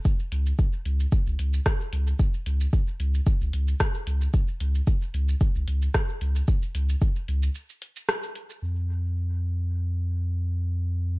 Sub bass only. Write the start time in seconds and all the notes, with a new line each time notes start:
0.32 C#2
0.85 C#2
1.27 C#2
1.39 C#2
1.93 C#2
2.46 C#2
3.00 C#2
3.41 C#2
3.53 C#2
4.07 C#2
4.61 C#2
5.14 C#2
5.55 C#2
5.68 C#2
6.21 C#2
6.75 C#2
7.28 C#2
8.62 F2